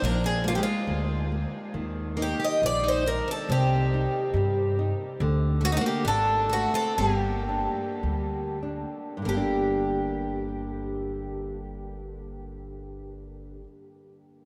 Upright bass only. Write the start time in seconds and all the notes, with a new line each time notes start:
0.02 A#1
0.87 D2
1.74 D#2
2.62 A#1
3.48 C2
4.34 G2
5.20 D2
6.05 G#1
6.98 G1
8.03 D2
9.26 G1